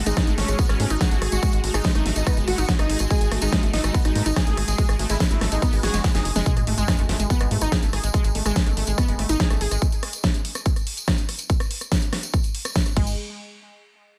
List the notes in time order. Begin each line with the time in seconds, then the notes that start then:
Already playing: G#3 F#4
0.06 G#1 G#3 D#4, closed hi-hat, tambourine
0.17 G#3, kick, cross-stick, snare, closed hi-hat, tambourine
0.27 G#1 A3, closed hi-hat, tambourine
0.38 G#1 A3 C#4, cross-stick, snare, open hi-hat
0.48 G#1 G#3, closed hi-hat, tambourine
0.59 B3, kick, closed hi-hat, tambourine
0.69 G#1 G#3 C#4, cross-stick, closed hi-hat, tambourine
0.80 G#2 A3, open hi-hat
0.90 G#1 D#4, cross-stick, closed hi-hat, tambourine
1.01 F#4 G#4, kick, snare, closed hi-hat, tambourine
1.11 G#1 A3, closed hi-hat, tambourine
1.22 G#1 G#4, cross-stick, open hi-hat
1.32 G#1 G#3 F#4, closed hi-hat, tambourine
1.43 G#3, kick, cross-stick, closed hi-hat, tambourine
1.53 G#1 G#3, closed hi-hat, tambourine
1.64 G#1 A3, open hi-hat
1.74 G#1 G#3 D#4, cross-stick, closed hi-hat, tambourine
1.84 G#3, kick, snare, closed hi-hat, tambourine
1.95 G#1 A3 D#4, cross-stick, closed hi-hat, tambourine
2.06 G#1 A3, snare, open hi-hat
2.16 G#1 G#3 D#4, closed hi-hat, tambourine
2.27 B3, kick, cross-stick, closed hi-hat, tambourine
2.37 F#1 G#3, closed hi-hat, tambourine
2.48 G#1 A3 F#4, cross-stick, open hi-hat
2.58 G#1 D#4, closed hi-hat, tambourine
2.69 G#4, kick, snare, closed hi-hat, tambourine
2.79 G#1 A3 D#4, cross-stick, closed hi-hat, tambourine
2.90 G#1 G#4, open hi-hat
2.99 G#1 G#3, cross-stick, closed hi-hat, tambourine
3.11 G#3 G#4, kick, closed hi-hat, tambourine
3.21 G#1 G#3, closed hi-hat, tambourine
3.31 G#1 A3, cross-stick, open hi-hat
3.41 G#1 G#3 D#4, closed hi-hat, tambourine
3.52 G#3, kick, cross-stick, snare, closed hi-hat
3.63 G#1 A3, closed hi-hat, tambourine
3.73 G#1 A3 D#4, snare, open hi-hat
3.84 G#1 G#3, cross-stick, closed hi-hat, tambourine
3.94 B3, kick, closed hi-hat, tambourine
4.05 G#1 G#3 D#4, cross-stick, closed hi-hat, tambourine
4.15 G#2 A3, open hi-hat
4.26 G#1 D#4, closed hi-hat, tambourine
4.36 G#4, kick, cross-stick, snare, closed hi-hat, tambourine
4.47 G#1 A3, closed hi-hat, tambourine
4.57 G#1 G#4, cross-stick, open hi-hat
4.68 G#1 G#3 G#4, closed hi-hat, tambourine
4.78 G#3, kick, closed hi-hat, tambourine
4.89 G#1 G#3, cross-stick, closed hi-hat, tambourine
4.99 G#1 A3, open hi-hat
5.09 G#1 G#3 E4, cross-stick, closed hi-hat, tambourine
5.20 G#3, kick, snare, closed hi-hat, tambourine
5.31 G#1 A3 E4, closed hi-hat, tambourine
5.41 G#1 A3, cross-stick, snare, open hi-hat
5.52 G#1 G#3 D#4, closed hi-hat, tambourine
5.62 B3, kick, cross-stick, closed hi-hat, tambourine
5.73 G#1 G#3, open hi-hat, tambourine
5.83 G#1 F#4 G#4, snare, open hi-hat
5.94 F#1 G#3, snare, closed hi-hat, tambourine
6.04 G#3, kick, snare, closed hi-hat, tambourine
6.15 F#1 D#4 G#4, snare, closed hi-hat, tambourine
6.25 F#1, open hi-hat
6.36 F#1 G#3, snare, closed hi-hat, tambourine
6.46 G#3, kick, closed hi-hat, tambourine, sub drop
6.57 G#1 G#3, cross-stick, closed hi-hat, tambourine
6.67 G#1 A3, open hi-hat
6.78 G#1 G#3, closed hi-hat, tambourine
6.88 G#3, kick, cross-stick, snare, closed hi-hat, tambourine
6.98 G#1 A3, closed hi-hat, tambourine
7.09 G#1 A3, cross-stick, snare, open hi-hat
7.20 G#1 G#3, closed hi-hat, tambourine
7.30 B3, kick, closed hi-hat, tambourine
7.40 G#1 G#3, cross-stick, closed hi-hat, tambourine
7.51 G#2 A3, open hi-hat
7.61 G#1 D#4, cross-stick, closed hi-hat, tambourine
7.72 G#4, kick, snare, closed hi-hat, tambourine
7.82 G#1 A3, closed hi-hat, tambourine
7.93 G#1 G#4, cross-stick, open hi-hat
8.04 G#1 G#3, closed hi-hat, tambourine
8.14 G#3, kick, cross-stick, closed hi-hat, tambourine
8.24 G#1 G#3, closed hi-hat, tambourine
8.35 G#1 A3, open hi-hat
8.46 G#1 G#3, cross-stick, closed hi-hat, tambourine
8.56 G#3, kick, snare, closed hi-hat, tambourine
8.66 G#1 A3, cross-stick, closed hi-hat, tambourine
8.77 G#1 A3, open hi-hat
8.87 G#1 G#3, closed hi-hat, tambourine
8.98 B3, kick, cross-stick, closed hi-hat, tambourine
9.08 F#1 G#3, closed hi-hat, tambourine
9.19 G#1 A3, cross-stick, open hi-hat
9.29 G#1 D#4, closed hi-hat, tambourine
9.40 G#4, kick, snare, closed hi-hat, tambourine
9.50 G#1 A3, cross-stick, closed hi-hat, tambourine
9.61 G#1 G#4, open hi-hat
9.71 G#1 G#3, cross-stick, closed hi-hat, tambourine
9.82 kick, closed hi-hat, tambourine
9.92 closed hi-hat, tambourine
10.03 cross-stick, open hi-hat
10.13 closed hi-hat, tambourine
10.24 kick, cross-stick, snare, closed hi-hat, tambourine
10.34 closed hi-hat, tambourine
10.45 open hi-hat
10.55 cross-stick, closed hi-hat, tambourine
10.66 kick, closed hi-hat, tambourine
10.76 cross-stick, closed hi-hat, tambourine
10.87 open hi-hat
10.97 closed hi-hat, tambourine
11.08 kick, cross-stick, snare, closed hi-hat, tambourine
11.18 closed hi-hat, tambourine
11.29 cross-stick, open hi-hat
11.39 closed hi-hat, tambourine
11.50 kick, closed hi-hat, tambourine
11.60 cross-stick, closed hi-hat, tambourine
11.71 open hi-hat
11.81 cross-stick, closed hi-hat, tambourine
11.92 kick, snare, closed hi-hat, tambourine
12.02 closed hi-hat, tambourine
12.13 cross-stick, snare, open hi-hat
12.23 closed hi-hat, tambourine
12.34 kick, cross-stick, closed hi-hat, tambourine
12.43 closed hi-hat, tambourine
12.55 open hi-hat
12.65 cross-stick, closed hi-hat, tambourine
12.76 kick, snare, closed hi-hat, tambourine
12.85 cross-stick, closed hi-hat, tambourine
12.97 G#1 G#3, kick, crash
13.07 tambourine